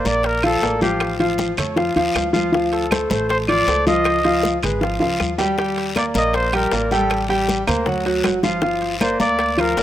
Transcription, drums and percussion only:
0.05 high bongo, high conga, short guiro
0.23 high bongo, high conga, high timbale, long guiro
0.43 high conga, high timbale, claves
0.61 high bongo, low bongo, high conga, low timbale, short guiro
0.81 high bongo, high conga, short guiro
1.00 high bongo, high conga, high timbale, long guiro, claves
1.20 high conga, high timbale
1.38 high bongo, high conga, low timbale, short guiro
1.57 high bongo, high conga, low conga, high timbale, short guiro, claves
1.77 high bongo, high conga, long guiro
1.97 high bongo, high conga, high timbale
2.14 high bongo, low bongo, high conga, high timbale, low timbale, short guiro, claves
2.34 high bongo, high conga, short guiro
2.53 high bongo, long guiro
2.73 high bongo, high conga, high timbale
2.91 high bongo, high conga, high timbale, low timbale, short guiro, claves
3.10 high bongo, high conga, short guiro
3.29 high bongo, high conga, high timbale, long guiro
3.48 high conga, high timbale, claves
3.67 high bongo, low bongo, high conga, low timbale, short guiro
3.87 high bongo, high conga, short guiro
4.04 high bongo, high conga, high timbale, long guiro, claves
4.24 high conga, high timbale
4.43 high bongo, high conga, low timbale, short guiro
4.63 high bongo, high conga, low conga, high timbale, short guiro, claves
4.81 high bongo, high conga, long guiro
5.01 high bongo, high conga, high timbale
5.20 high bongo, low bongo, high conga, short guiro, claves
5.39 high bongo, high conga, low timbale, short guiro
5.58 high bongo, high conga, long guiro
5.77 high bongo, high conga, high timbale
5.96 high bongo, high conga, high timbale, low timbale, short guiro, claves
6.14 high bongo, high conga, short guiro
6.33 high bongo, high conga, high timbale, long guiro
6.53 high conga, high timbale, claves
6.72 high bongo, low bongo, high conga, low timbale, short guiro
6.91 high bongo, high conga, short guiro
7.10 high bongo, high conga, high timbale, long guiro, claves
7.30 high conga, high timbale
7.48 high bongo, high conga, low timbale, short guiro
7.67 high bongo, high conga, low conga, high timbale, short guiro, claves
7.86 high bongo, high conga, low conga, long guiro
8.06 high bongo, high conga, high timbale
8.24 high bongo, low bongo, high conga, high timbale, low timbale, short guiro, claves
8.43 high bongo, high conga, short guiro
8.62 high bongo, high conga, long guiro
8.81 high bongo, high conga, high timbale
9.01 high bongo, high conga, high timbale, low timbale, short guiro, claves
9.20 high bongo, high conga, short guiro
9.39 high bongo, high conga, high timbale, long guiro
9.58 high conga, high timbale, claves
9.77 high bongo, low bongo, high conga, low timbale, short guiro

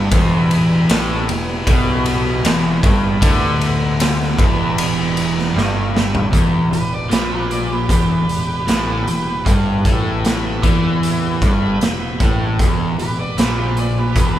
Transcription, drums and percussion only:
0.11 kick, ride
0.51 ride
0.89 snare, ride
1.29 ride
1.67 kick, ride
2.06 ride
2.45 snare, ride
2.83 kick, ride
3.22 kick, ride
3.61 ride
4.00 snare, ride
4.22 snare
4.39 kick, ride
4.78 ride
5.17 ride
5.38 snare
5.58 snare
5.97 snare
6.15 floor tom
6.33 kick, closed hi-hat
6.73 closed hi-hat
7.11 snare, closed hi-hat
7.51 closed hi-hat
7.89 kick, closed hi-hat
8.29 closed hi-hat
8.68 snare, closed hi-hat
9.08 closed hi-hat
9.46 kick, closed hi-hat
9.85 kick, closed hi-hat
10.25 snare, closed hi-hat
10.63 kick, closed hi-hat
11.03 closed hi-hat
11.42 kick, closed hi-hat
11.81 snare, closed hi-hat
12.20 kick, closed hi-hat
12.59 kick, closed hi-hat
12.99 closed hi-hat
13.38 snare, closed hi-hat
13.77 closed hi-hat
14.16 kick, closed hi-hat

